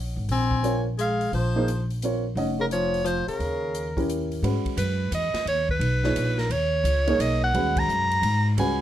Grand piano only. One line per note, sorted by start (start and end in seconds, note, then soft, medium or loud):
0.00 0.22 C#4 medium
0.00 0.22 C#5 soft
0.00 0.22 D#5 medium
0.00 0.22 F#5 soft
0.63 0.83 C4 medium
0.63 0.84 F4 medium
0.63 0.84 A#4 medium
0.63 0.84 C#5 medium
1.56 1.66 A#3 medium
1.56 1.66 D#4 medium
1.56 1.67 G#4 medium
1.56 1.67 C5 medium
2.03 2.23 C4 medium
2.03 2.23 F4 soft
2.03 2.23 A#4 soft
2.03 2.24 C#5 medium
2.37 3.33 C#4 medium
2.37 3.33 C#5 medium
2.37 3.34 D#5 medium
2.37 3.33 F#5 soft
3.97 4.41 C#4 medium
3.97 4.41 E4 soft
3.97 4.41 G4 soft
3.97 4.42 A#4 medium
4.43 5.40 G#3 soft
4.43 5.40 C#4 soft
4.43 5.40 F#4 soft
4.43 5.40 B4 medium
6.04 6.48 A#2 medium
6.04 6.48 D#4 medium
6.04 6.49 G#4 medium
6.04 6.49 C#5 medium
7.07 7.51 A#3 medium
7.07 7.51 D#4 medium
7.07 7.52 G#4 medium
7.07 7.52 C#5 medium
7.54 8.50 G#3 medium
7.54 8.50 C#4 medium
7.54 8.50 F#4 medium
7.54 8.51 B4 medium
8.58 8.81 G#3 medium
8.58 8.81 C#4 medium
8.58 8.81 F#4 medium
8.58 8.81 B4 medium